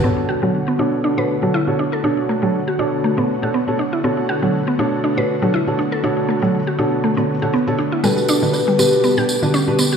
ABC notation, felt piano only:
X:1
M:4/4
L:1/16
Q:"Swing 16ths" 1/4=120
K:Bm
V:1 name="Felt piano"
[B,,DAc]3 [B,,DAc] z2 [B,,DAc]3 [B,,DAc] z [B,,DAc] z [B,,DAc] z2 | [B,,DAc]3 [B,,DAc] z2 [B,,DAc]3 [B,,DAc] z [B,,DAc] z [B,,DAc] z2 | [B,,DAc]3 [B,,DAc] z2 [B,,DAc]3 [B,,DAc] z [B,,DAc] z [B,,DAc] z2 | [B,,DAc]3 [B,,DAc] z2 [B,,DAc]3 [B,,DAc] z [B,,DAc] z [B,,DAc] z2 |
[B,,DGB]3 [B,,DGB] z2 [B,,DGB]3 [B,,DGB] z [B,,DGB] z [B,,DGB] z2 |]